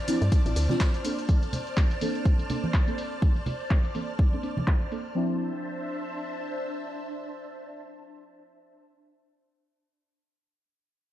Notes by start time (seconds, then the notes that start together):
Already playing: C5 D5 A5 F6
0.07 F3 C4 D4 E4, open hi-hat, ride, high conga, shaker
0.22 G2, closed hi-hat, shaker
0.32 kick, closed hi-hat, ride, shaker
0.46 A1 F3 C4 D4 E4, closed hi-hat, shaker
0.56 D2, open hi-hat, ride, shaker
0.69 F3 C4 D4 F4, snare, high conga, low conga, shaker
0.80 kick, snare, clap, closed hi-hat, ride, shaker
0.94 closed hi-hat, shaker
1.04 A#3 C4 D4 A4 D5, open hi-hat, ride, shaker
1.18 closed hi-hat, shaker
1.29 kick, closed hi-hat, high conga, shaker
1.43 closed hi-hat, shaker
1.53 open hi-hat, low conga, shaker
1.67 closed hi-hat, shaker
1.77 kick, clap, closed hi-hat, shaker
1.91 closed hi-hat, shaker
2.01 A#3 C4 D4 A4, open hi-hat, high conga, shaker
2.15 closed hi-hat, shaker
2.25 kick, closed hi-hat, shaker
2.39 closed hi-hat, shaker
2.49 A#3 C4 D4 A4, open hi-hat, low conga, shaker
2.64 high conga, shaker
2.74 kick, clap, closed hi-hat, shaker
2.87 A#3 C4 D4 A4, closed hi-hat, shaker
2.98 open hi-hat, shaker
3.12 closed hi-hat, shaker
3.22 kick, closed hi-hat, high conga, shaker
3.36 closed hi-hat, shaker
3.46 open hi-hat, low conga, shaker
3.60 closed hi-hat, shaker
3.71 kick, clap, closed hi-hat, shaker
3.85 closed hi-hat, shaker
3.94 A#3 C4 D4 A4, open hi-hat, high conga, shaker
4.09 closed hi-hat, shaker
4.19 kick, closed hi-hat
4.33 A#3 C4 D4 A4, closed hi-hat, shaker
4.43 A#3 C4 D4 A4, open hi-hat, shaker
4.57 high conga, low conga, shaker
4.67 kick, clap, closed hi-hat
4.81 closed hi-hat
4.91 A#3 C4 D4 A4, open hi-hat, shaker
5.06 closed hi-hat, shaker
5.15 F3 C4 D4 E4 C5 E5 A5